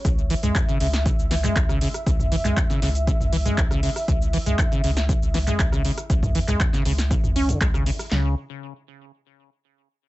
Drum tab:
HH |x-oxx-oxx-oxx-ox|x-oxx-oxx-oxx-oo|x-oxx-oxx-oxx-ox|x-oxx-oxx-oxx-oo|
SH |xx-xxx-xxx-xxx-x|xx-xxx-xxx-xxx-x|xx-xxx-xxx-xxx-x|xx-xxx-xxx-xxx-x|
CP |----x------xx---|---xx-------x---|----x------xx---|---xx-------x---|
SD |-------o--o--r-r|-----oo------r-r|-------o--o--r-r|-----ooo-----r-r|
T2 |---o-------o----|-o-o-----o-o----|---o-------o----|-o-o-----o-o----|
BD |o---o---o---o---|o---o---o---o---|o---o---o---o---|oo--o---o---o---|

HH |----------------|
SH |----------------|
CP |x---------------|
SD |o---------------|
T2 |----------------|
BD |----------------|